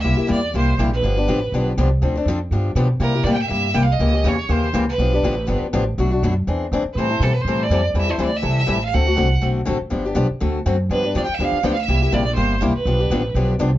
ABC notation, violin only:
X:1
M:4/4
L:1/16
Q:"Swing" 1/4=243
K:Gmix
V:1 name="Violin"
e4 d4 c4 z2 B2- | B8- B2 z6 | z16 | _B4 (3d2 g2 e2 e4 (3g2 f2 _e2- |
_e4 ^c4 =c4 z2 B2- | B8- B2 z6 | z12 z3 B | c4 (3A2 B2 c2- c2 d4 z2 |
e2 c3/2 c/2 d2 e4 e4 f2 | ^f8 z8 | z16 | B4 (3d2 g2 e2 f4 (3g2 f2 e2- |
e4 d2 d2 c4 z2 B2- | B8- B2 z6 |]